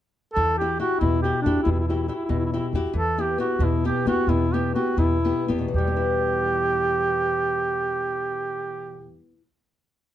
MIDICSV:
0, 0, Header, 1, 4, 480
1, 0, Start_track
1, 0, Key_signature, 1, "minor"
1, 0, Tempo, 432900
1, 402, Time_signature, 6, 3, 24, 8
1, 3755, Tempo, 453515
1, 5195, Tempo, 505051
1, 8075, Tempo, 518583
1, 10265, End_track
2, 0, Start_track
2, 0, Title_t, "Duduk"
2, 0, Program_c, 0, 69
2, 372, Note_on_c, 0, 69, 101
2, 630, Note_off_c, 0, 69, 0
2, 643, Note_on_c, 0, 67, 73
2, 871, Note_off_c, 0, 67, 0
2, 887, Note_on_c, 0, 66, 83
2, 1096, Note_off_c, 0, 66, 0
2, 1103, Note_on_c, 0, 64, 76
2, 1349, Note_off_c, 0, 64, 0
2, 1355, Note_on_c, 0, 67, 66
2, 1567, Note_off_c, 0, 67, 0
2, 1574, Note_on_c, 0, 62, 70
2, 1799, Note_off_c, 0, 62, 0
2, 1805, Note_on_c, 0, 64, 79
2, 1899, Note_off_c, 0, 64, 0
2, 1906, Note_on_c, 0, 64, 50
2, 1985, Note_off_c, 0, 64, 0
2, 1992, Note_on_c, 0, 64, 49
2, 2070, Note_off_c, 0, 64, 0
2, 2077, Note_on_c, 0, 64, 40
2, 2162, Note_off_c, 0, 64, 0
2, 2174, Note_on_c, 0, 64, 37
2, 2243, Note_off_c, 0, 64, 0
2, 2250, Note_on_c, 0, 64, 35
2, 2297, Note_off_c, 0, 64, 0
2, 2304, Note_on_c, 0, 64, 47
2, 2380, Note_off_c, 0, 64, 0
2, 2386, Note_on_c, 0, 64, 39
2, 2472, Note_off_c, 0, 64, 0
2, 2500, Note_on_c, 0, 64, 41
2, 2541, Note_off_c, 0, 64, 0
2, 2548, Note_on_c, 0, 64, 44
2, 2639, Note_off_c, 0, 64, 0
2, 2646, Note_on_c, 0, 64, 53
2, 2715, Note_off_c, 0, 64, 0
2, 2721, Note_on_c, 0, 64, 52
2, 2791, Note_off_c, 0, 64, 0
2, 2797, Note_on_c, 0, 64, 41
2, 2863, Note_off_c, 0, 64, 0
2, 2870, Note_on_c, 0, 64, 43
2, 2959, Note_off_c, 0, 64, 0
2, 3299, Note_on_c, 0, 69, 88
2, 3559, Note_on_c, 0, 67, 71
2, 3576, Note_off_c, 0, 69, 0
2, 3766, Note_off_c, 0, 67, 0
2, 3772, Note_on_c, 0, 66, 71
2, 4024, Note_on_c, 0, 64, 65
2, 4040, Note_off_c, 0, 66, 0
2, 4248, Note_off_c, 0, 64, 0
2, 4254, Note_on_c, 0, 67, 68
2, 4461, Note_off_c, 0, 67, 0
2, 4488, Note_on_c, 0, 66, 84
2, 4712, Note_on_c, 0, 64, 75
2, 4727, Note_off_c, 0, 66, 0
2, 4976, Note_on_c, 0, 67, 61
2, 4992, Note_off_c, 0, 64, 0
2, 5183, Note_off_c, 0, 67, 0
2, 5190, Note_on_c, 0, 66, 65
2, 5402, Note_off_c, 0, 66, 0
2, 5422, Note_on_c, 0, 64, 71
2, 5925, Note_off_c, 0, 64, 0
2, 6139, Note_on_c, 0, 67, 80
2, 9382, Note_off_c, 0, 67, 0
2, 10265, End_track
3, 0, Start_track
3, 0, Title_t, "Nylon-string guitar"
3, 0, Program_c, 1, 24
3, 404, Note_on_c, 1, 52, 53
3, 677, Note_on_c, 1, 66, 29
3, 680, Note_on_c, 1, 64, 38
3, 684, Note_on_c, 1, 67, 42
3, 868, Note_off_c, 1, 64, 0
3, 869, Note_off_c, 1, 66, 0
3, 879, Note_off_c, 1, 67, 0
3, 882, Note_on_c, 1, 64, 34
3, 882, Note_on_c, 1, 66, 28
3, 884, Note_off_c, 1, 52, 0
3, 892, Note_on_c, 1, 67, 39
3, 1119, Note_on_c, 1, 47, 50
3, 1280, Note_off_c, 1, 64, 0
3, 1281, Note_off_c, 1, 66, 0
3, 1287, Note_off_c, 1, 67, 0
3, 1374, Note_on_c, 1, 64, 35
3, 1381, Note_on_c, 1, 66, 30
3, 1389, Note_on_c, 1, 67, 41
3, 1598, Note_off_c, 1, 47, 0
3, 1603, Note_off_c, 1, 64, 0
3, 1604, Note_off_c, 1, 66, 0
3, 1614, Note_off_c, 1, 67, 0
3, 1617, Note_on_c, 1, 66, 45
3, 1618, Note_on_c, 1, 64, 47
3, 1627, Note_on_c, 1, 67, 49
3, 1830, Note_on_c, 1, 47, 53
3, 2004, Note_off_c, 1, 64, 0
3, 2005, Note_off_c, 1, 66, 0
3, 2010, Note_off_c, 1, 67, 0
3, 2100, Note_on_c, 1, 66, 36
3, 2106, Note_on_c, 1, 64, 33
3, 2109, Note_on_c, 1, 67, 46
3, 2298, Note_off_c, 1, 66, 0
3, 2300, Note_off_c, 1, 64, 0
3, 2302, Note_off_c, 1, 67, 0
3, 2308, Note_off_c, 1, 47, 0
3, 2309, Note_on_c, 1, 66, 33
3, 2319, Note_on_c, 1, 67, 40
3, 2321, Note_on_c, 1, 64, 38
3, 2541, Note_on_c, 1, 47, 49
3, 2708, Note_off_c, 1, 66, 0
3, 2709, Note_off_c, 1, 64, 0
3, 2710, Note_off_c, 1, 67, 0
3, 2812, Note_on_c, 1, 64, 44
3, 2817, Note_on_c, 1, 66, 33
3, 2819, Note_on_c, 1, 67, 47
3, 3021, Note_off_c, 1, 47, 0
3, 3035, Note_off_c, 1, 67, 0
3, 3038, Note_off_c, 1, 64, 0
3, 3041, Note_off_c, 1, 66, 0
3, 3047, Note_on_c, 1, 67, 55
3, 3054, Note_on_c, 1, 64, 52
3, 3054, Note_on_c, 1, 66, 45
3, 3231, Note_off_c, 1, 67, 0
3, 3233, Note_off_c, 1, 64, 0
3, 3235, Note_off_c, 1, 66, 0
3, 3253, Note_on_c, 1, 52, 43
3, 3524, Note_on_c, 1, 59, 37
3, 3529, Note_on_c, 1, 64, 38
3, 3532, Note_on_c, 1, 67, 50
3, 3737, Note_off_c, 1, 59, 0
3, 3738, Note_off_c, 1, 52, 0
3, 3750, Note_on_c, 1, 59, 47
3, 3753, Note_off_c, 1, 64, 0
3, 3755, Note_off_c, 1, 67, 0
3, 3767, Note_on_c, 1, 67, 49
3, 3769, Note_on_c, 1, 64, 34
3, 3984, Note_on_c, 1, 47, 58
3, 4137, Note_off_c, 1, 59, 0
3, 4147, Note_off_c, 1, 64, 0
3, 4147, Note_off_c, 1, 67, 0
3, 4240, Note_on_c, 1, 59, 35
3, 4243, Note_on_c, 1, 64, 39
3, 4248, Note_on_c, 1, 67, 50
3, 4453, Note_off_c, 1, 47, 0
3, 4462, Note_off_c, 1, 59, 0
3, 4465, Note_off_c, 1, 64, 0
3, 4474, Note_on_c, 1, 59, 49
3, 4476, Note_off_c, 1, 67, 0
3, 4480, Note_on_c, 1, 64, 47
3, 4488, Note_on_c, 1, 67, 56
3, 4708, Note_on_c, 1, 47, 51
3, 4868, Note_off_c, 1, 59, 0
3, 4869, Note_off_c, 1, 64, 0
3, 4876, Note_off_c, 1, 67, 0
3, 4972, Note_on_c, 1, 59, 36
3, 4977, Note_on_c, 1, 64, 39
3, 4981, Note_on_c, 1, 67, 42
3, 5190, Note_off_c, 1, 59, 0
3, 5193, Note_off_c, 1, 47, 0
3, 5195, Note_off_c, 1, 67, 0
3, 5199, Note_off_c, 1, 64, 0
3, 5202, Note_on_c, 1, 59, 35
3, 5207, Note_on_c, 1, 67, 42
3, 5211, Note_on_c, 1, 64, 32
3, 5414, Note_on_c, 1, 47, 54
3, 5581, Note_off_c, 1, 59, 0
3, 5584, Note_off_c, 1, 67, 0
3, 5586, Note_off_c, 1, 64, 0
3, 5669, Note_on_c, 1, 59, 34
3, 5671, Note_on_c, 1, 64, 34
3, 5681, Note_on_c, 1, 67, 44
3, 5882, Note_off_c, 1, 64, 0
3, 5884, Note_off_c, 1, 59, 0
3, 5886, Note_off_c, 1, 47, 0
3, 5891, Note_off_c, 1, 67, 0
3, 5895, Note_on_c, 1, 59, 43
3, 5895, Note_on_c, 1, 64, 35
3, 5902, Note_on_c, 1, 67, 50
3, 5910, Note_on_c, 1, 40, 40
3, 5992, Note_on_c, 1, 47, 35
3, 6081, Note_off_c, 1, 59, 0
3, 6084, Note_on_c, 1, 52, 35
3, 6085, Note_off_c, 1, 64, 0
3, 6090, Note_off_c, 1, 67, 0
3, 6178, Note_on_c, 1, 55, 40
3, 6266, Note_on_c, 1, 59, 39
3, 6353, Note_on_c, 1, 64, 40
3, 9158, Note_off_c, 1, 40, 0
3, 9238, Note_off_c, 1, 47, 0
3, 9328, Note_off_c, 1, 52, 0
3, 9420, Note_off_c, 1, 55, 0
3, 9506, Note_off_c, 1, 59, 0
3, 9590, Note_off_c, 1, 64, 0
3, 10265, End_track
4, 0, Start_track
4, 0, Title_t, "Upright bass"
4, 0, Program_c, 2, 32
4, 405, Note_on_c, 2, 40, 64
4, 878, Note_off_c, 2, 40, 0
4, 1125, Note_on_c, 2, 40, 70
4, 1444, Note_off_c, 2, 40, 0
4, 1612, Note_on_c, 2, 40, 61
4, 1763, Note_off_c, 2, 40, 0
4, 1844, Note_on_c, 2, 40, 70
4, 2309, Note_off_c, 2, 40, 0
4, 2543, Note_on_c, 2, 40, 78
4, 2864, Note_off_c, 2, 40, 0
4, 3026, Note_on_c, 2, 40, 61
4, 3181, Note_off_c, 2, 40, 0
4, 3258, Note_on_c, 2, 40, 62
4, 3735, Note_off_c, 2, 40, 0
4, 3972, Note_on_c, 2, 40, 78
4, 4290, Note_off_c, 2, 40, 0
4, 4464, Note_on_c, 2, 40, 61
4, 4616, Note_off_c, 2, 40, 0
4, 4689, Note_on_c, 2, 40, 72
4, 5181, Note_off_c, 2, 40, 0
4, 5408, Note_on_c, 2, 40, 79
4, 5726, Note_off_c, 2, 40, 0
4, 5907, Note_on_c, 2, 40, 64
4, 6058, Note_off_c, 2, 40, 0
4, 6136, Note_on_c, 2, 40, 66
4, 9379, Note_off_c, 2, 40, 0
4, 10265, End_track
0, 0, End_of_file